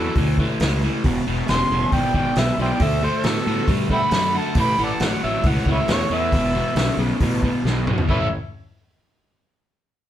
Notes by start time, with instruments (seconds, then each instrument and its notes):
Already playing: overdriven electric guitar A2 F#3, lead electric guitar E4, harmonica A4
0.16 fingered electric bass D2, overdriven electric guitar A2 E3, kick, open hi-hat
0.38 overdriven electric guitar A2 E3, kick
0.60 fingered electric bass C#2, overdriven electric guitar A2 E3, snare, open hi-hat
0.83 overdriven electric guitar A2 E3
1.04 fingered electric bass E1, overdriven electric guitar E2 B2, kick, open hi-hat
1.27 fingered electric bass E1, overdriven electric guitar E2 B2
1.48 fingered electric bass E1, overdriven electric guitar E2 C#3, lead electric guitar G#5, harmonica C6, snare, open hi-hat
1.70 fingered electric bass E1, overdriven electric guitar E2 C#3
1.92 fingered electric bass G#1, overdriven electric guitar E2 B2, lead electric guitar D5, harmonica G5, kick, open hi-hat
2.14 fingered electric bass G#1, overdriven electric guitar E2 B2, lead electric guitar D5, harmonica G5, kick
2.36 fingered electric bass B1, overdriven electric guitar E2 B2, lead electric guitar B4, harmonica E5, snare, open hi-hat
2.58 fingered electric bass B1, overdriven electric guitar E2 B2, harmonica C5 E5 G5, lead electric guitar D5
2.80 fingered electric bass D2, overdriven electric guitar D3 A3, lead electric guitar C5, harmonica E5, kick, open hi-hat
3.02 overdriven electric guitar D3 A3, lead electric guitar A4, harmonica C5
3.24 fingered electric bass A2, overdriven electric guitar D3 B3, lead electric guitar F#4, harmonica A4, snare, open hi-hat
3.46 fingered electric bass A2, overdriven electric guitar D3 B3
3.67 fingered electric bass G2, overdriven electric guitar D3 A3, kick, open hi-hat
3.89 overdriven electric guitar D3 A3, harmonica E5 G5 B5, kick
3.93 lead electric guitar F#5
4.11 fingered electric bass F#2, overdriven electric guitar D3 A3, snare, open hi-hat
4.34 overdriven electric guitar D3 A3, lead electric guitar F#5, harmonica A5
4.55 fingered electric bass A1, overdriven electric guitar A2 E3, lead electric guitar G5, kick, open hi-hat
4.61 harmonica B5
4.78 fingered electric bass A1, overdriven electric guitar A2 E3, lead electric guitar F#5
4.84 harmonica D5 F#5 A5
5.00 fingered electric bass A1, overdriven electric guitar A2 F#3, lead electric guitar C#5, harmonica F#5, snare, open hi-hat
5.24 fingered electric bass A1, overdriven electric guitar A2 F#3, lead electric guitar C#5, harmonica E5
5.44 fingered electric bass C#2, overdriven electric guitar A2 E3, lead electric guitar C#5, harmonica F#5, kick, open hi-hat
5.66 fingered electric bass C#2, overdriven electric guitar A2 E3, lead electric guitar C#5, kick
5.72 harmonica B4 C#5 E5
5.87 fingered electric bass E2, overdriven electric guitar A2 E3, lead electric guitar A4, snare, open hi-hat
5.92 harmonica C#5
6.10 fingered electric bass E2, overdriven electric guitar A2 E3, lead electric guitar B4
6.14 harmonica E5
6.32 fingered electric bass E1, overdriven electric guitar E2 B2, kick, open hi-hat
6.54 overdriven electric guitar E2 B2
6.75 fingered electric bass B1, overdriven electric guitar E2 C#3, snare, open hi-hat
6.97 fingered electric bass B1, overdriven electric guitar E2 C#3
7.20 fingered electric bass A1, overdriven electric guitar E2 B2, kick, open hi-hat
7.43 overdriven electric guitar E2 B2, kick
7.64 fingered electric bass B1, overdriven electric guitar E2 B2, snare
7.87 overdriven electric guitar E2 B2, mid tom
7.98 floor tom
8.08 fingered electric bass A1, overdriven electric guitar A2 E3 G3 C#4 E4 A4, harmonica B4 C#5 E5, lead electric guitar C#5, kick